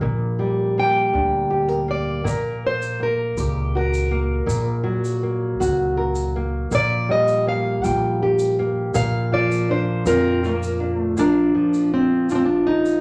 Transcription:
Already playing: nylon-string guitar A#3 D4 A#4
0.01 upright bass A#1, nylon-string guitar A#2
0.39 nylon-string guitar G3
0.78 nylon-string guitar A#3, steel-string acoustic guitar G5
1.13 upright bass D2, nylon-string guitar D4
1.50 nylon-string guitar G4
1.68 nylon-string guitar A#4
1.88 nylon-string guitar A#3, steel-string acoustic guitar D5
2.24 upright bass A#1, nylon-string guitar A#2, steel-string acoustic guitar A#4, shaker
2.67 steel-string acoustic guitar C5
2.82 shaker
3.00 nylon-string guitar A#3, steel-string acoustic guitar A#4
3.37 upright bass C#2, steel-string acoustic guitar G4, shaker
3.75 nylon-string guitar F#4, steel-string acoustic guitar A#4
3.94 shaker
4.11 nylon-string guitar A#3
4.46 upright bass A#1, nylon-string guitar A#2, shaker
4.84 nylon-string guitar F#3
5.05 shaker
5.23 nylon-string guitar A#3
5.60 upright bass C#2, nylon-string guitar F#4, shaker
5.97 nylon-string guitar A#4
6.15 shaker
6.36 nylon-string guitar A#3
6.71 upright bass A#1, nylon-string guitar A#2, steel-string acoustic guitar D5, shaker
7.09 nylon-string guitar G3, steel-string acoustic guitar D#5
7.28 shaker
7.47 nylon-string guitar A#3, steel-string acoustic guitar F5
7.83 upright bass A#1, nylon-string guitar F4, steel-string acoustic guitar G5, shaker
8.22 nylon-string guitar G4
8.39 shaker
8.59 nylon-string guitar A#3
8.94 upright bass A#1, nylon-string guitar A#2, steel-string acoustic guitar F5, shaker
9.32 nylon-string guitar F3, steel-string acoustic guitar D5
9.51 shaker
9.70 nylon-string guitar D4, steel-string acoustic guitar C5
10.06 upright bass F2, steel-string acoustic guitar C4 A#4, nylon-string guitar F4, shaker
10.43 steel-string acoustic guitar A#3, nylon-string guitar F4, shaker
10.63 shaker
10.80 nylon-string guitar D4
10.97 steel-string acoustic guitar A3
11.17 nylon-string guitar A#2 F3 D4 F4 A#4, steel-string acoustic guitar D4, shaker
11.55 nylon-string guitar F3
11.74 shaker
11.94 steel-string acoustic guitar C4
12.29 steel-string acoustic guitar D4, nylon-string guitar F4, shaker
12.35 steel-string acoustic guitar C4
12.45 steel-string acoustic guitar D4
12.67 steel-string acoustic guitar D#4, nylon-string guitar A#4
12.85 shaker

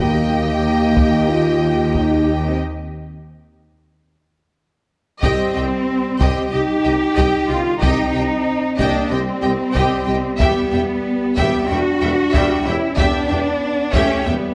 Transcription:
0.00 tuba D#2, double bass section D#2, cello section D#3, french horn section A#3, viola section G4, violin section D#5 G5
0.97 taiko
1.29 french horn section F4
1.94 french horn section D#4, taiko
2.45 french horn section C4
5.22 tuba C2, double bass section C2, french horn section G3, cello section C4, viola section G4, violin section D#5 G5, taiko
5.53 tuba C2, double bass section C2, viola section G4, violin section D#5 G5
6.20 tuba C2, double bass section C2, viola section G4, violin section D#5 G5, taiko
6.52 tuba C2, double bass section C2, french horn section D#4, cello section G4, viola section G4, violin section D#5 G5
6.84 tuba C2, double bass section C2, viola section G4, violin section D#5 G5
7.16 double bass section C2, tuba C2, viola section G4, violin section D#5 G5, taiko
7.49 double bass section C2, tuba C2, french horn section D3, cello section F4, viola section G4, violin section D#5 G5
7.81 double bass section C2, tuba C2, french horn section C4, cello section D#4, viola section G4, violin section D#5 G5, taiko
8.14 double bass section C2, tuba C2, viola section G4, violin section D#5 G5
8.78 double bass section C2, tuba C2, french horn section A#3, cello section D4, viola section G4, violin section D#5 G5, taiko
9.10 tuba C2, double bass section C2, french horn section G3, cello section C4, viola section G4, violin section D#5 G5
9.42 double bass section C2, tuba C2, viola section G4, violin section D#5 G5
9.74 double bass section C2, tuba C2, viola section G4, violin section D#5 G5, taiko
10.06 double bass section C2, tuba C2, viola section G4, violin section D#5 G5
10.39 tuba E1, double bass section E2, french horn section G3, cello section B3, viola section G4, violin section E5 G5, taiko
10.72 tuba E1, double bass section E2, viola section G4, violin section E5 G5
11.36 tuba E1, double bass section E2, viola section G4, violin section E5 G5, taiko
11.69 tuba E1, double bass section E2, viola section G3, french horn section D4, cello section F#4, violin section E5 G5
12.01 tuba E1, double bass section E2, viola section G3, violin section E5 G5
12.32 tuba E1, double bass section E2, viola section G3, violin section E5 G5, taiko
12.65 tuba E1, double bass section E2, french horn section C#4, cello section E4, viola section G4, violin section E5 G5
12.97 tuba E1, double bass section E2, french horn section B3, cello section D4, viola section G4, violin section E5 G5, taiko
13.28 tuba E1, double bass section E2, viola section G4, violin section E5 G5
13.93 tuba E1, double bass section E2, french horn section A3, cello section C#4, viola section G4, violin section E5 G5, taiko
14.24 tuba E1, double bass section E2, french horn section G3, cello section B3, viola section G4, violin section E5 G5

